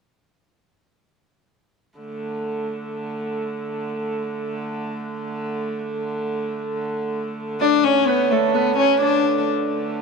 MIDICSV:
0, 0, Header, 1, 4, 480
1, 0, Start_track
1, 0, Tempo, 500000
1, 9617, End_track
2, 0, Start_track
2, 0, Title_t, "Harp"
2, 0, Program_c, 0, 46
2, 7307, Note_on_c, 0, 74, 77
2, 7539, Note_on_c, 0, 73, 71
2, 7597, Note_off_c, 0, 74, 0
2, 7762, Note_on_c, 0, 71, 70
2, 7990, Note_on_c, 0, 69, 73
2, 8208, Note_off_c, 0, 71, 0
2, 8212, Note_on_c, 0, 71, 63
2, 8437, Note_off_c, 0, 73, 0
2, 8441, Note_on_c, 0, 73, 70
2, 8659, Note_on_c, 0, 74, 62
2, 8716, Note_off_c, 0, 73, 0
2, 9617, Note_off_c, 0, 69, 0
2, 9617, Note_off_c, 0, 71, 0
2, 9617, Note_off_c, 0, 74, 0
2, 9617, End_track
3, 0, Start_track
3, 0, Title_t, "Viola da gamba"
3, 0, Program_c, 1, 42
3, 7304, Note_on_c, 1, 62, 88
3, 7524, Note_on_c, 1, 61, 87
3, 7539, Note_off_c, 1, 62, 0
3, 7745, Note_on_c, 1, 59, 84
3, 7759, Note_off_c, 1, 61, 0
3, 7974, Note_on_c, 1, 57, 71
3, 7989, Note_off_c, 1, 59, 0
3, 8198, Note_on_c, 1, 59, 73
3, 8212, Note_off_c, 1, 57, 0
3, 8418, Note_off_c, 1, 59, 0
3, 8424, Note_on_c, 1, 61, 81
3, 8640, Note_off_c, 1, 61, 0
3, 8653, Note_on_c, 1, 62, 75
3, 9076, Note_off_c, 1, 62, 0
3, 9617, End_track
4, 0, Start_track
4, 0, Title_t, "Hurdy-gurdy"
4, 0, Program_c, 2, 110
4, 1912, Note_on_c, 2, 50, 61
4, 1912, Note_on_c, 2, 57, 58
4, 7300, Note_off_c, 2, 57, 0
4, 7300, Note_on_c, 2, 57, 68
4, 7301, Note_off_c, 2, 50, 0
4, 7301, Note_on_c, 2, 50, 68
4, 9617, Note_off_c, 2, 50, 0
4, 9617, Note_off_c, 2, 57, 0
4, 9617, End_track
0, 0, End_of_file